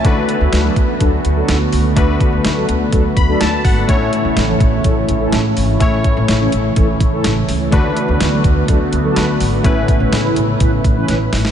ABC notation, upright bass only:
X:1
M:4/4
L:1/16
Q:1/4=125
K:A
V:1 name="Upright bass" clef=bass
D,,2 z D,, D,,2 D,,2 D,,2 D,,2 D,,2 C,,2 | D,,2 z D,, D,,2 D,,2 D,,2 D,,2 D,,2 G,,,2 | A,,,2 z A,,, A,,,2 A,,,2 A,,,2 A,,,2 A,,,2 G,,,2 | A,,,2 z A,,, A,,,2 A,,,2 A,,,2 A,,,2 A,,,2 C,,2 |
D,,2 z D,, D,,2 D,,2 D,,2 D,,2 D,,2 G,,,2 | A,,,2 z A,,, A,,,2 A,,,2 A,,,2 A,,,2 A,,,2 G,,,2 |]